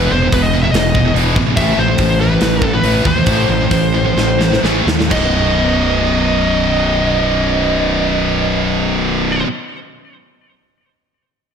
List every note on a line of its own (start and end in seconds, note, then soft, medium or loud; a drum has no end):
0.00 0.11 E2 medium
0.00 0.11 B2 medium
0.00 0.12 E3 medium
0.00 0.11 B4 medium
0.11 0.30 E1 medium
0.11 0.24 E2 medium
0.11 0.23 B2 medium
0.11 0.33 C5 medium
0.24 0.33 E2 medium
0.24 0.33 B2 medium
0.32 0.70 E1 medium
0.32 0.52 E2 medium
0.32 0.52 B2 medium
0.32 0.44 B4 medium
0.32 kick medium
0.32 open hi-hat medium
0.42 0.62 D#5 medium
0.54 0.64 E2 medium
0.54 0.64 B2 medium
0.63 0.75 E2 medium
0.63 0.75 B2 medium
0.63 0.68 E5 medium
0.71 1.11 E1 medium
0.71 1.12 D#5 medium
0.71 snare loud
0.71 open hi-hat medium
0.76 0.94 E2 medium
0.76 0.94 B2 medium
0.95 1.07 E2 medium
0.95 1.06 B2 medium
0.95 kick medium
1.08 1.16 E2 medium
1.08 1.17 B2 medium
1.15 1.34 E1 medium
1.15 1.36 E2 medium
1.15 1.37 B2 medium
1.15 1.37 E3 medium
1.15 open hi-hat soft
1.36 1.55 A1 medium
1.36 1.48 E2 medium
1.36 1.48 B2 medium
1.36 kick medium
1.50 1.59 E2 medium
1.50 1.59 B2 medium
1.57 1.76 A1 medium
1.57 1.79 A2 medium
1.57 1.77 A3 medium
1.57 1.79 E5 loud
1.57 kick loud
1.57 open hi-hat medium
1.61 1.79 E3 medium
1.61 1.79 A3 medium
1.77 1.97 A1 medium
1.77 1.90 A2 medium
1.77 1.90 E3 medium
1.77 2.20 C5 medium
1.91 2.00 A2 medium
1.91 2.00 E3 medium
1.98 2.37 A1 medium
1.98 2.19 A2 medium
1.98 kick medium
1.98 open hi-hat medium
2.02 2.20 E3 medium
2.20 2.31 A2 medium
2.20 2.31 E3 medium
2.20 2.74 B4 medium
2.32 2.41 A2 medium
2.32 2.41 E3 medium
2.41 2.79 A1 medium
2.41 2.61 A2 medium
2.41 2.61 E3 medium
2.41 snare loud
2.41 open hi-hat medium
2.62 2.73 A2 medium
2.62 2.72 E3 medium
2.62 kick medium
2.74 2.84 A2 medium
2.74 2.84 E3 medium
2.74 3.07 B4 medium
2.83 3.03 A1 medium
2.83 3.05 A2 medium
2.83 3.05 E3 medium
2.83 3.05 A3 medium
2.83 open hi-hat medium
3.05 3.25 D#2 medium
3.05 3.17 A2 medium
3.05 3.16 E3 medium
3.05 4.60 C5 medium
3.05 kick medium
3.17 3.27 A2 medium
3.17 3.28 E3 medium
3.26 3.47 A1 medium
3.26 3.48 A2 medium
3.26 3.48 E3 medium
3.26 3.49 A3 medium
3.26 kick loud
3.26 open hi-hat medium
3.49 3.69 A1 medium
3.49 3.61 A2 medium
3.49 3.60 E3 medium
3.62 3.72 A2 medium
3.62 3.72 E3 medium
3.71 4.12 A1 medium
3.71 3.92 A2 medium
3.71 3.93 E3 medium
3.71 kick medium
3.71 open hi-hat medium
3.94 4.05 A2 medium
3.94 4.05 E3 medium
4.06 4.16 A2 medium
4.06 4.17 E3 medium
4.16 4.58 A1 medium
4.16 4.38 A2 medium
4.16 4.38 E3 medium
4.16 snare medium
4.40 4.51 A2 medium
4.40 4.51 E3 medium
4.40 snare medium
4.52 4.62 A2 medium
4.52 4.62 E3 medium
4.52 snare medium
4.63 4.85 A1 medium
4.63 4.85 A2 medium
4.63 4.86 E3 medium
4.63 4.86 A3 medium
4.63 snare medium
4.86 5.08 D#2 medium
4.86 4.98 A2 medium
4.86 4.98 E3 medium
4.86 snare medium
4.99 5.10 A2 medium
4.99 5.11 E3 medium
4.99 snare medium
5.10 9.42 B0 medium
5.10 9.45 B1 medium
5.10 9.47 F#2 medium
5.10 9.48 B2 medium
5.10 9.42 D#5 medium
5.10 kick medium
5.10 crash medium